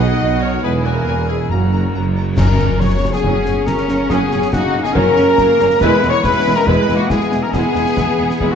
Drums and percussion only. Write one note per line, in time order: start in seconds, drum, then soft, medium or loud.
2.38 concert bass drum medium
2.38 snare medium
2.38 crash medium
2.59 snare soft
2.81 concert bass drum medium
2.81 snare medium
3.24 concert bass drum medium
3.46 snare medium
3.67 concert bass drum medium
3.67 snare medium
3.78 snare soft
3.88 snare medium
4.10 concert bass drum medium
4.10 snare medium
4.31 snare medium
4.42 snare medium
4.53 concert bass drum medium
4.53 snare medium
4.85 snare medium
4.95 concert bass drum medium
5.16 snare medium
5.38 concert bass drum medium
5.38 snare medium
5.59 snare medium
5.70 snare medium
5.81 concert bass drum medium
5.81 snare medium
5.81 crash soft
6.03 snare medium
6.24 concert bass drum medium
6.24 snare medium
6.67 concert bass drum medium
6.89 snare medium
7.10 concert bass drum medium
7.10 snare medium
7.21 snare soft
7.32 snare medium
7.53 concert bass drum medium
7.53 snare medium
7.75 snare medium
7.86 snare medium
7.97 concert bass drum medium
7.97 snare medium
8.30 snare medium
8.40 concert bass drum medium